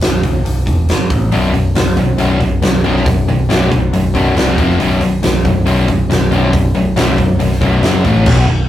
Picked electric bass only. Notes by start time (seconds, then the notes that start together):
0.01 B0
0.45 B0
0.67 E1
0.89 F#1
1.10 A1
1.33 B0
1.54 B0
1.76 B0
2.20 B0
2.41 B0
2.63 B0
2.85 B0
3.06 B0
3.28 B0
3.49 B0
3.94 B0
4.15 B0
4.37 C1
4.58 F1
4.80 B0
5.02 B0
5.24 B0
5.67 B0
5.88 B0
6.10 B0
6.32 B0
6.53 B0
6.75 B0
6.97 B0
7.40 B0
7.62 B0
7.84 F#1
8.05 A1
8.26 B0
8.48 B0